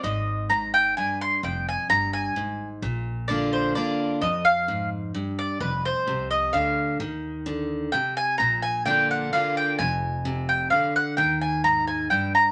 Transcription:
<<
  \new Staff \with { instrumentName = "Mandolin" } { \time 3/4 \key bes \mixolydian \tempo 4 = 129 ees''4 bes''8 g''8 aes''8 c'''8 | g''8 aes''8 bes''8 aes''4~ aes''16 r16 | r4 d''8 c''8 d''4 | ees''8 f''4 r4 d''8 |
b'8 c''4 ees''8 f''4 | r2 g''8 aes''8 | bes''8 aes''8 g''8 ges''8 f''8 g''8 | aes''4. g''8 f''8 ges''8 |
g''8 aes''8 bes''8 aes''8 g''8 bes''8 | }
  \new Staff \with { instrumentName = "Steel-string acoustic guitar" } { \clef bass \time 3/4 \key bes \mixolydian << { r2. | r2. | r4 <d bes d' f'>4 <d bes d' f'>4 | r2. |
r2. | r2. | r4 <d bes d' f'>4 <d bes d' f'>4 | r2. |
r2. | } \\ { aes,4 aes,4 g,4 | f,4 g,4 aes,4 | bes,2 r4 | f,4 aes,4 g,4 |
f,4 c4 d4 | ees4 d4 c4 | bes,2 r4 | f,4 c4 d4 |
ees4 aes,4 g,4 | } >> }
  \new Staff \with { instrumentName = "Upright bass" } { \clef bass \time 3/4 \key bes \mixolydian aes,,2. | f,,4 g,,4 aes,,4 | bes,,2. | f,2. |
f,,4 c,4 d,4 | ees,2. | bes,,2. | f,,2. |
ees,2. | }
>>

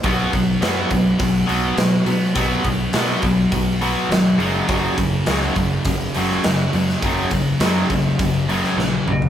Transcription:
<<
  \new Staff \with { instrumentName = "Distorted electric guitar" } { \clef bass \time 4/4 \key b \major \tempo 4 = 103 <b, fis b>8 <b, fis>8 <b, fis b>8 <b, fis>8 <b, fis>8 <b, fis b>8 <b, fis>8 <b, fis>8 | <b, fis b>8 <b, fis>8 <b, fis b>8 <b, fis>8 <b, fis>8 <b, fis b>8 <b, fis>8 <fis, cis fis>8 | <fis, cis fis>8 <fis, cis>8 <fis, cis fis>8 <fis, cis>8 <fis, cis>8 <fis, cis fis>8 <fis, cis>8 <fis, cis>8 | <fis, cis fis>8 <fis, cis>8 <fis, cis fis>8 <fis, cis>8 <fis, cis>8 <fis, cis fis>8 <fis, cis>8 <fis, cis>8 | }
  \new Staff \with { instrumentName = "Distorted electric guitar" } { \clef bass \time 4/4 \key b \major <b, fis b>2.~ <b, fis b>8 <b, fis b>8 | <b, fis b>2.~ <b, fis b>8 <fis, cis fis>8~ | <fis, cis fis>2. <fis, cis fis>8 <fis, cis fis>8~ | <fis, cis fis>2. <fis, cis fis>8 r8 | }
  \new Staff \with { instrumentName = "Overdriven electric guitar" } { \clef bass \time 4/4 \key b \major <b, fis b>8 <b, fis>8 <b, fis b>8 <b, fis>8 <b, fis>8 <b, fis b>8 <b, fis>8 <b, fis>8 | <b, fis b>8 <b, fis>8 <b, fis b>8 <b, fis>8 <b, fis>8 <b, fis b>8 <b, fis>8 <fis, cis fis>8 | <fis, cis fis>8 <fis, cis>8 <fis, cis fis>8 <fis, cis>8 <fis, cis>8 <fis, cis fis>8 <fis, cis>8 <fis, cis>8 | <fis, cis fis>8 <fis, cis>8 <fis, cis fis>8 <fis, cis>8 <fis, cis>8 <fis, cis fis>8 <fis, cis>8 <fis, cis>8 | }
  \new Staff \with { instrumentName = "Picked electric bass" } { \clef bass \time 4/4 \key b \major b,,8 b,,8 fis,8 b,,8 b,,8 b,,8 b,8 b,8 | b,,8 b,,8 b,8 b,,8 b,,4 gis,,8 fis,,8 | fis,,8 fis,,8 cis,8 fis,,8 fis,,8 fis,,8 fis,8 fis,8 | fis,,8 fis,,8 fis,8 fis,,8 fis,,4 ais,,8 b,,8 | }
  \new DrumStaff \with { instrumentName = "Drums" } \drummode { \time 4/4 <hho bd>8 <hho bd>8 <hho sn>8 <hho bd>8 <hho bd>8 hho8 <hho sn>8 hho8 | <hho bd>8 <hho bd>8 <hho sn>8 <hho bd>8 <hho bd>8 hho8 <hho sn>8 hho8 | <hho bd>8 <hho bd>8 <hho sn>8 <hho bd>8 <hho bd>8 hho16 sn16 <hho sn>8 hho16 sn16 | <hho bd>8 <hho bd>8 <hho sn>8 <hho bd>8 <hho bd>8 hho16 sn16 sn8 toml16 tomfh16 | }
>>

